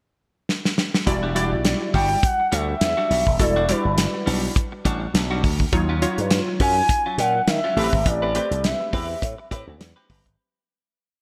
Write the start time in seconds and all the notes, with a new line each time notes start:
0.49 snare
0.65 snare
0.78 snare
0.94 snare
1.06 E1 G3 E4 F#4 D5, muted clean electric guitar stroke, kick, closed hi-hat
1.23 G3 D4 F#4
1.35 G3 D4 E4 F#4 G4 D5, closed hi-hat
1.52 B1, muted clean electric guitar stroke
1.65 snare, closed hi-hat
1.82 muted clean electric guitar stroke
1.94 G1 G3 D4 F#4 G5, kick, open hi-hat
2.11 muted clean electric guitar stroke
2.23 F#5, kick, closed hi-hat
2.40 muted clean electric guitar stroke
2.52 D2 G3 D4 F#4 E5, closed hi-hat
2.69 muted clean electric guitar stroke
2.81 E2, muted clean electric guitar stroke, snare, closed hi-hat
2.97 G3 D4 F#4
3.10 B1 G3 D4 F#4, open hi-hat
3.27 D#1, muted clean electric guitar stroke, kick
3.39 E1 G3 E4 F#4 A4 D5, muted clean electric guitar stroke, kick, closed hi-hat
3.56 G3 D4 F#4
3.68 G3 D4 E4 F#4 G4 B4 D5, closed hi-hat
3.85 G1, muted clean electric guitar stroke
3.98 snare, closed hi-hat
4.14 muted clean electric guitar stroke
4.26 B1 G3 D4 F#4, open hi-hat
4.43 muted clean electric guitar stroke
4.56 kick, closed hi-hat
4.72 muted clean electric guitar stroke
4.85 A1 G3 D4 F#4, kick, closed hi-hat
5.01 muted clean electric guitar stroke
5.14 B1, muted clean electric guitar stroke, snare, closed hi-hat
5.31 G3 D4 F#4
5.44 D2, muted clean electric guitar stroke, kick, open hi-hat
5.60 muted clean electric guitar stroke, kick
5.72 D#2 F#3 D#4 F4 C#5, muted clean electric guitar stroke, kick, closed hi-hat
5.89 F#3 C#4 F4
6.02 F#3 C#4 D#4 F4 F#4 C#5, closed hi-hat
6.18 G2, muted clean electric guitar stroke, closed hi-hat
6.31 snare, closed hi-hat
6.48 muted clean electric guitar stroke
6.60 F#2 F#3 C#4 F4 G#5, kick, open hi-hat
6.77 muted clean electric guitar stroke
6.89 muted clean electric guitar stroke, kick, closed hi-hat
7.06 F#3 C#4 F4
7.18 A#2 F#3 C#4 F4 F#5, closed hi-hat
7.35 muted clean electric guitar stroke
7.47 D#3 E5, muted clean electric guitar stroke, snare, closed hi-hat
7.64 F#3 C#4 F4
7.76 A1 A3 C4 G4 A4 B4, open hi-hat
7.84 B4
7.93 G#1, muted clean electric guitar stroke, kick
8.06 A1 D5, muted clean electric guitar stroke, kick, closed hi-hat
8.22 C4 G4 B4
8.35 A3 C4 G4 B4 C5, closed hi-hat
8.51 C2, muted clean electric guitar stroke, closed hi-hat
8.64 E5, snare, closed hi-hat
8.80 muted clean electric guitar stroke
8.93 E2 C4 G4 B4, kick, open hi-hat
9.10 muted clean electric guitar stroke
9.22 A2, kick, closed hi-hat
9.38 muted clean electric guitar stroke
9.51 A2 C4 G4 B4, kick, closed hi-hat
9.67 D2, muted clean electric guitar stroke
9.80 E2, muted clean electric guitar stroke, snare, closed hi-hat
9.96 C4 G4 B4
10.09 G1 C4 G4 B4, kick, open hi-hat
10.25 G#1, muted clean electric guitar stroke, kick, closed hi-hat